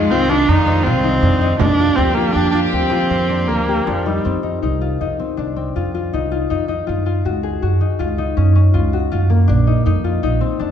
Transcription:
Already playing: string section D#3 G#3 F4, viola G#3, harp C4 D#4 F4 G#4 A#4
0.11 upright bass C2, viola C4, harp F4
0.30 viola D4, harp D#4, frame drum
0.48 upright bass F2, harp D4, viola D#4
0.67 harp C4
0.84 upright bass C2, viola C4, harp F4
1.04 harp D#4
1.22 upright bass F2, harp D4
1.41 harp D#4
1.59 upright bass F2, string section F3 A#3 G4, viola D4, harp D4, frame drum
1.79 harp F4
1.95 upright bass D2, viola C4, harp G4
2.15 viola A#3, harp F4, frame drum
2.33 upright bass F2, viola D4, harp G4, frame drum
2.51 viola D4, harp F4, frame drum
2.71 upright bass D2, viola C4, harp G4
2.90 harp F4, frame drum
3.09 upright bass F2, harp C4, frame drum
3.29 harp D4
3.48 upright bass D2, viola A#3, harp A#4
3.67 harp G4, frame drum
3.87 upright bass F2, viola F3, harp D4
4.06 viola G3, harp D#4
4.25 upright bass F2, harp C4
4.43 harp D#4
4.62 upright bass C2, harp D#4
4.81 harp F4
5.01 upright bass F2, harp D#4
5.19 harp C4
5.37 upright bass C2, harp D4
5.56 harp C4
5.76 upright bass F2, harp F4
5.94 harp F4
6.13 upright bass C2, harp D#4
6.31 harp F4
6.50 upright bass F2, harp D#4
6.68 harp D#4
6.87 upright bass F#2, harp F4
7.06 harp F4
7.25 upright bass C#2, harp F#4
7.43 harp G#4
7.62 upright bass F#2, harp F#4
7.81 harp D#4
7.99 upright bass C#2, harp F4
8.18 harp D#4
8.37 upright bass F#2, harp C#4
8.55 harp C#4
8.74 upright bass C#2, harp F4
8.93 harp F#4
9.12 upright bass F#2, harp F4
9.30 harp A#3
9.48 upright bass A#1, harp D4
9.67 harp D#4
9.86 upright bass F2, harp D#4
10.04 harp F4
10.23 upright bass A#1, harp D#4
10.41 harp C4
10.59 upright bass F2, harp D4

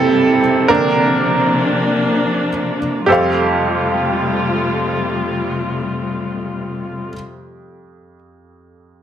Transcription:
Already playing: string section C3 G3 E4 A4, upright piano E3 G3 A#3 C4 G4 A4
0.68 upright piano D3 A#3 C4 D4 A#4, string section F3 A#3 D4
3.06 upright piano F2 G4 A4 C5, string section C3 G3 A3 F4
3.12 upright piano F5

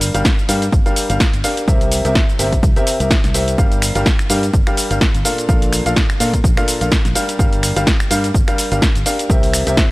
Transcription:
Already playing: upright piano G3 D4 G4 A#4 F5
0.01 open hi-hat, cabasa
0.14 fingered electric bass G1, upright piano G3 D4 G4 A#4 F5, closed hi-hat, cabasa
0.25 kick, snare, cabasa
0.39 cabasa
0.49 fingered electric bass G2, upright piano G3 D4 G4 A#4 F5, open hi-hat, cabasa
0.62 closed hi-hat, cabasa
0.72 fingered electric bass G1, kick, cabasa
0.86 upright piano G3 D4 G4 A#4 F5, closed hi-hat, cabasa
0.96 open hi-hat, cabasa
1.10 fingered electric bass G1, upright piano G3 D4 G4 A#4 F5, closed hi-hat, cabasa
1.20 kick, snare, cabasa
1.33 fingered electric bass G1, closed hi-hat, cabasa
1.44 upright piano D4 G4 A#4 F5, open hi-hat, cabasa
1.57 closed hi-hat, cabasa
1.68 fingered electric bass C2, upright piano C3 C4 G4 A#4 E5, kick, cabasa
1.81 closed hi-hat, cabasa
1.92 open hi-hat, cabasa
2.05 fingered electric bass C2, upright piano C3 C4 G4 A#4 E5, closed hi-hat, cabasa
2.15 kick, snare, cabasa
2.29 cabasa
2.39 fingered electric bass G1, upright piano C3 C4 G4 A#4 E5, open hi-hat, cabasa
2.53 kick, closed hi-hat, cabasa
2.63 fingered electric bass C2, kick, cabasa
2.76 upright piano C3 C4 G4 A#4 E5, closed hi-hat, cabasa
2.87 open hi-hat, cabasa
3.00 fingered electric bass C2, upright piano C3 C4 G4 A#4 E5, closed hi-hat, cabasa
3.11 kick, snare, cabasa
3.24 fingered electric bass C2, snare, closed hi-hat, cabasa
3.34 upright piano C4 G4 A#4 E5, open hi-hat, cabasa
3.48 closed hi-hat, cabasa
3.58 fingered electric bass G1, upright piano G3 D4 G4 A#4 F5, kick, cabasa
3.72 closed hi-hat, cabasa
3.82 finger snap, open hi-hat, cabasa
3.95 fingered electric bass G1, upright piano G3 D4 G4 A#4 F5, closed hi-hat, cabasa
4.06 kick, snare, cabasa
4.19 finger snap, cabasa
4.30 fingered electric bass G2, upright piano G3 D4 G4 A#4 F5, open hi-hat, cabasa
4.43 closed hi-hat, cabasa
4.53 fingered electric bass G1, kick, cabasa
4.67 upright piano G3 D4 G4 A#4 F5, finger snap, closed hi-hat, cabasa
4.77 open hi-hat, cabasa
4.91 fingered electric bass G1, upright piano G3 D4 G4 A#4 F5, closed hi-hat, cabasa
5.01 kick, snare, cabasa
5.14 fingered electric bass G1, closed hi-hat, cabasa
5.25 upright piano A#2 D4 A4 A#4 F5, open hi-hat, cabasa
5.38 closed hi-hat, cabasa
5.49 fingered electric bass A#1, upright piano A#2 D4 A4 A#4 F5, kick, cabasa
5.62 closed hi-hat, cabasa
5.73 finger snap, open hi-hat, cabasa
5.86 fingered electric bass A#1, upright piano A#2 D4 A4 A#4 F5, closed hi-hat, cabasa
5.96 kick, snare, cabasa
6.10 finger snap, cabasa
6.20 fingered electric bass A#2, upright piano A#2 D4 A4 A#4 F5, open hi-hat, cabasa
6.34 kick, closed hi-hat, cabasa
6.44 fingered electric bass A#1, kick, cabasa
6.57 upright piano A#2 D4 A4 A#4 F5, finger snap, closed hi-hat, cabasa
6.68 open hi-hat, cabasa
6.81 fingered electric bass A#1, upright piano A#2 D4 A4 A#4 F5, closed hi-hat, cabasa
6.92 kick, snare, cabasa
7.05 fingered electric bass A#1, snare, closed hi-hat, cabasa
7.15 upright piano G3 D4 G4 A#4 F5, open hi-hat, cabasa
7.29 closed hi-hat, cabasa
7.39 fingered electric bass G1, upright piano G3 D4 G4 A#4 F5, kick, cabasa
7.53 closed hi-hat, cabasa
7.63 finger snap, open hi-hat, cabasa
7.76 fingered electric bass G1, upright piano G3 D4 G4 A#4 F5, closed hi-hat, cabasa
7.87 kick, snare, cabasa
8.00 finger snap, cabasa
8.11 fingered electric bass G2, upright piano G3 D4 G4 A#4 F5, open hi-hat, cabasa
8.24 closed hi-hat, cabasa
8.34 fingered electric bass G1, kick, cabasa
8.48 upright piano G3 D4 G4 A#4 F5, finger snap, closed hi-hat, cabasa
8.58 open hi-hat, cabasa
8.72 fingered electric bass G1, upright piano G3 D4 G4 A#4 F5, closed hi-hat, cabasa
8.82 kick, snare, cabasa
8.95 fingered electric bass G1, closed hi-hat, cabasa
9.06 upright piano D4 G4 A#4 F5, open hi-hat, cabasa
9.19 closed hi-hat, cabasa
9.30 fingered electric bass C2, upright piano C3 C4 G4 A#4 E5, kick, cabasa
9.43 open hi-hat, cabasa
9.54 finger snap, open hi-hat, cabasa
9.67 fingered electric bass C2, upright piano C3 C4 G4 A#4 E5, closed hi-hat, cabasa
9.77 kick, snare, cabasa

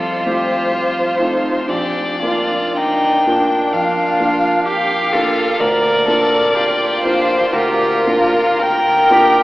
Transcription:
Already playing: grand piano F2 A3 C4 F4, violin F4 C5, cello A4
0.26 grand piano A3 C4 F4, cello G4
0.73 cello F4
1.19 grand piano A3 C4 F4, cello D#4
1.68 grand piano A#1, cello D4, violin G4 D5
2.22 grand piano A#3 D4 F4, violin F4
2.77 cello D4, violin D#4 G5
3.26 grand piano A#3 D4 F4, violin D4
3.73 grand piano F2, cello F4, violin F5
4.20 grand piano A#3 D4 F4
4.65 violin G4 F5, cello G4
5.13 grand piano A#3 D4 F4, violin F4, cello A4
5.59 grand piano D2, violin A#4 D5, cello A#4
6.07 grand piano A#3 D4 F4, violin A4
6.55 cello F4, violin G4
7.04 grand piano A#3 D4 F4, violin C5
7.52 grand piano D2, violin F4 A#4, cello G4
8.06 grand piano A#3 D4 F4, cello F4
8.59 violin A#4 G5, cello A#4
9.10 grand piano A#3 D4 F4, cello G4

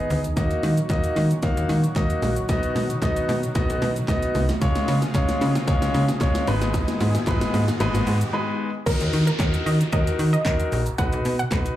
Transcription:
Already playing: analog synth pad B2 D#3 G#3 D#4 G#4, grand piano B3 D#4 G#4 D#5
0.10 fm bass D2, open hi-hat, shaker
0.24 closed hi-hat, shaker
0.36 fm bass D#2, analog synth pad A#2 D#3 F#3 F#4, grand piano A#3 D#4 F#4 D#5, kick, snare, closed hi-hat, riser, shaker
0.51 closed hi-hat, shaker
0.63 fm bass D#3, snare, open hi-hat, shaker
0.77 closed hi-hat, shaker
0.90 fm bass D#2, grand piano A#3 D#4 F#4 D#5, kick, snare, clap, closed hi-hat, shaker
1.04 closed hi-hat, shaker
1.16 fm bass D#3, snare, open hi-hat, shaker
1.31 closed hi-hat, shaker
1.43 fm bass D#2, grand piano A#3 D#4 F#4 F5, kick, snare, closed hi-hat, shaker
1.57 fm bass D#2, closed hi-hat, shaker
1.69 fm bass D#3, snare, open hi-hat, shaker
1.84 closed hi-hat, shaker
1.96 fm bass D#2, grand piano A#3 D#4 F#4 D#5, kick, snare, clap, closed hi-hat, shaker
2.10 closed hi-hat, shaker
2.22 fm bass A#1, snare, open hi-hat, shaker
2.36 closed hi-hat, shaker
2.49 fm bass B1, analog synth pad B2 D#4, grand piano B3 D#4 F#4 D#5, kick, snare, closed hi-hat, shaker
2.63 closed hi-hat, shaker
2.76 fm bass B2, snare, open hi-hat, shaker
2.90 closed hi-hat, shaker
3.02 fm bass B1, grand piano B3 D#4 F#4 D#5, kick, snare, clap, closed hi-hat, shaker
3.16 closed hi-hat, shaker
3.29 fm bass B2, snare, open hi-hat, shaker
3.43 closed hi-hat, shaker
3.55 fm bass B1, grand piano B3 D#4 F#4 D#5, kick, snare, closed hi-hat, shaker
3.70 fm bass B1, closed hi-hat, shaker
3.82 fm bass B2, snare, open hi-hat, shaker
3.96 closed hi-hat, shaker
4.08 fm bass B1, grand piano B3 D#4 F#4 D#5, kick, snare, clap, closed hi-hat, shaker
4.22 closed hi-hat, shaker
4.35 fm bass C2, snare, open hi-hat, shaker
4.49 snare, closed hi-hat, shaker
4.61 fm bass C#2, analog synth pad C#3 F3 G#3 F4 G#4, grand piano G#3 C#4 F4 C#5, kick, snare, closed hi-hat, shaker
4.75 snare, closed hi-hat, shaker
4.88 fm bass C#3, snare, open hi-hat, shaker
5.02 snare, closed hi-hat, shaker
5.15 fm bass C#2, grand piano G#3 C#4 F4 C#5, kick, snare, clap, closed hi-hat, shaker
5.29 snare, closed hi-hat, shaker
5.41 fm bass C#3, snare, open hi-hat, shaker
5.55 snare, closed hi-hat, shaker
5.67 fm bass C#2, grand piano G#3 C#4 F4 C#5, kick, snare, closed hi-hat, shaker
5.82 fm bass C#2, snare, closed hi-hat, shaker
5.94 fm bass C#3, snare, open hi-hat, shaker
6.08 snare, closed hi-hat, shaker
6.20 fm bass C#2, grand piano G#3 C#4 F4 C#5, kick, snare, clap, closed hi-hat, shaker
6.35 snare, closed hi-hat, shaker
6.47 fm bass G#1, analog synth pad B2 D#3 D#4 G#4, grand piano G#3 B3 D#4 B4, snare, open hi-hat, shaker
6.62 snare, closed hi-hat, shaker
6.74 kick, snare, closed hi-hat, shaker
6.88 snare, closed hi-hat, shaker
7.00 fm bass G#2, snare, open hi-hat, shaker
7.15 snare, closed hi-hat, shaker
7.27 fm bass G#1, grand piano G#3 B3 D#4 B4, kick, snare, clap, closed hi-hat, shaker
7.41 snare, closed hi-hat, shaker
7.54 fm bass G#2, snare, open hi-hat, shaker
7.68 snare, closed hi-hat, shaker
7.80 fm bass G#1, grand piano G#3 B3 D#4 B4, snare, closed hi-hat, shaker
7.94 fm bass G#1, snare, closed hi-hat, shaker
8.07 fm bass G#2, open hi-hat, shaker
8.21 closed hi-hat, shaker
8.33 grand piano G#3 B3 D#4 B4 B5
8.86 fm bass D#2, grand piano D#4 F#4 A#4, synth pluck A#4, kick, closed hi-hat, crash, downlifter, shaker
9.01 fm bass D#2, closed hi-hat, shaker
9.13 fm bass D#3, open hi-hat, shaker
9.27 synth pluck A#4, closed hi-hat, shaker
9.39 fm bass D#2, grand piano D#4 F#4 A#4, kick, snare, clap, closed hi-hat, shaker
9.54 closed hi-hat, shaker
9.66 fm bass D#3, synth pluck D#5, open hi-hat, shaker
9.81 closed hi-hat, shaker
9.92 fm bass D#2, grand piano D#4 F#4 A#4, synth pluck D#5, kick, closed hi-hat, shaker
10.07 closed hi-hat, shaker
10.19 fm bass D#3, open hi-hat, shaker
10.33 synth pluck D#5, closed hi-hat, shaker
10.45 fm bass D#2, grand piano D#4 F#4 A#4, kick, snare, clap, closed hi-hat, shaker
10.60 closed hi-hat, shaker
10.72 fm bass A#1, open hi-hat, shaker
10.86 closed hi-hat, shaker
10.98 fm bass B1, grand piano D#4 F#4 B4, synth pluck F#5, kick, closed hi-hat, shaker
11.13 fm bass B1, closed hi-hat, shaker
11.25 fm bass B2, open hi-hat, shaker
11.39 synth pluck F#5, closed hi-hat, shaker
11.51 fm bass B1, grand piano D#4 F#4 B4, kick, snare, clap, closed hi-hat, shaker
11.66 closed hi-hat, shaker

